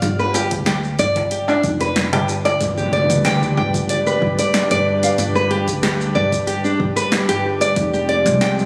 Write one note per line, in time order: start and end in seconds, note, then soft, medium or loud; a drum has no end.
0.02 0.53 G1 loud
0.02 closed hi-hat medium
0.02 shaker soft
0.19 0.33 B4 medium
0.19 shaker soft
0.34 0.51 G4 medium
0.34 closed hi-hat soft
0.34 darbuka ka medium
0.34 shaker medium
0.51 0.91 D2 medium
0.51 kick medium
0.51 closed hi-hat soft
0.51 darbuka tek soft
0.51 shaker soft
0.66 0.77 G4 medium
0.66 snare loud
0.66 closed hi-hat medium
0.66 shaker soft
0.84 shaker soft
0.99 1.39 G1 medium
0.99 1.30 D5 medium
0.99 closed hi-hat soft
0.99 shaker medium
1.16 kick loud
1.16 closed hi-hat soft
1.16 darbuka ka medium
1.16 darbuka tek medium
1.16 shaker soft
1.31 1.47 G4 medium
1.31 closed hi-hat medium
1.31 shaker soft
1.48 1.63 D4 medium
1.48 darbuka tek medium
1.48 shaker soft
1.63 2.13 F1 medium
1.63 kick loud
1.63 closed hi-hat soft
1.63 shaker medium
1.80 1.95 B4 medium
1.80 closed hi-hat soft
1.80 darbuka ka soft
1.80 darbuka dum medium
1.80 shaker soft
1.96 snare loud
1.96 closed hi-hat medium
1.96 shaker soft
2.13 2.52 G1 medium
2.13 2.27 G4 medium
2.13 closed hi-hat soft
2.13 darbuka tek medium
2.13 shaker soft
2.28 darbuka ka medium
2.28 shaker medium
2.45 2.60 D5 medium
2.45 closed hi-hat soft
2.45 darbuka tek medium
2.45 shaker soft
2.60 3.11 G1 medium
2.60 7.73 G3 medium
2.60 7.73 D4 medium
2.60 8.65 G4 medium
2.60 7.73 B4 medium
2.60 kick loud
2.60 closed hi-hat medium
2.60 impact medium
2.60 shaker medium
2.77 2.91 G4 medium
2.77 shaker soft
2.93 3.23 D5 medium
2.93 closed hi-hat soft
3.10 3.49 D2 medium
3.10 closed hi-hat soft
3.10 shaker medium
3.25 3.41 G5 medium
3.25 snare loud
3.25 closed hi-hat medium
3.25 shaker medium
3.42 shaker soft
3.57 3.98 G1 loud
3.57 3.88 G5 medium
3.74 kick loud
3.74 closed hi-hat soft
3.74 shaker medium
3.89 3.99 D5 medium
3.89 closed hi-hat medium
3.89 shaker medium
4.07 4.37 B4 medium
4.07 shaker soft
4.22 4.33 G1 loud
4.22 kick loud
4.39 4.69 D5 medium
4.39 closed hi-hat soft
4.39 shaker medium
4.54 snare loud
4.54 closed hi-hat medium
4.54 shaker medium
4.71 5.11 G1 medium
4.71 4.85 D5 medium
4.71 closed hi-hat medium
4.71 shaker soft
5.03 5.12 F5 medium
5.03 closed hi-hat soft
5.03 shaker medium
5.18 5.69 G1 loud
5.18 closed hi-hat medium
5.18 shaker medium
5.35 5.49 B4 medium
5.35 shaker soft
5.51 5.67 G4 medium
5.51 closed hi-hat soft
5.68 6.07 D2 loud
5.68 kick medium
5.68 closed hi-hat soft
5.68 shaker medium
5.83 5.93 G4 medium
5.83 snare loud
5.83 closed hi-hat medium
5.83 shaker medium
6.01 shaker soft
6.15 6.56 G1 loud
6.15 6.46 D5 medium
6.32 kick loud
6.32 closed hi-hat soft
6.32 shaker medium
6.47 6.63 G4 medium
6.47 closed hi-hat medium
6.47 shaker medium
6.64 6.79 D4 medium
6.64 shaker soft
6.80 6.91 G1 loud
6.80 kick loud
6.96 7.11 B4 loud
6.96 closed hi-hat soft
6.96 shaker medium
7.12 snare loud
7.12 closed hi-hat medium
7.12 shaker medium
7.29 7.69 G1 medium
7.29 7.43 G4 medium
7.29 closed hi-hat medium
7.29 shaker soft
7.61 7.76 D5 medium
7.61 closed hi-hat soft
7.61 shaker medium
7.76 8.27 F1 medium
7.76 8.65 F3 medium
7.76 8.65 G#3 medium
7.76 8.65 C4 medium
7.76 kick loud
7.76 closed hi-hat medium
7.76 shaker medium
7.93 8.07 G4 medium
7.93 shaker soft
8.09 8.39 D5 medium
8.09 closed hi-hat soft
8.26 8.65 C2 loud
8.26 closed hi-hat soft
8.26 shaker medium
8.41 8.57 G5 medium
8.41 snare loud
8.41 closed hi-hat medium
8.41 shaker medium
8.59 shaker soft